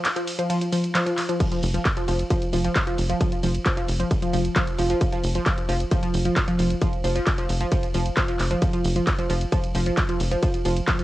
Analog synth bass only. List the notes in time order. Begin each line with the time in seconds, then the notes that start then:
1.63 F1
2.08 F1
2.53 F1
2.98 F1
3.43 F1
3.88 F1
4.34 F1
4.79 F1
5.24 F1
5.69 F1
6.14 F1
6.59 F1
7.04 F1
7.49 F1
7.94 F1
8.39 F1
8.85 F1
9.30 F1
9.75 F1
10.20 F1
10.65 F1